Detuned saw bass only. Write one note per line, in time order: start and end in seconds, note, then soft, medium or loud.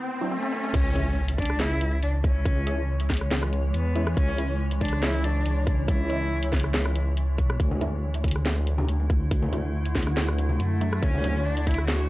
0.74 2.01 C#2 loud
2.03 3.30 C#2 loud
3.31 3.72 C#2 loud
3.74 4.15 E2 loud
4.17 5.44 C#2 medium
5.45 6.72 C#2 loud
6.74 7.33 C#2 loud
7.33 7.58 C2 loud
7.60 8.87 D2 loud
8.88 10.15 D2 loud
10.17 10.58 D2 loud
10.60 11.01 F#2 loud
11.02 12.09 D2 loud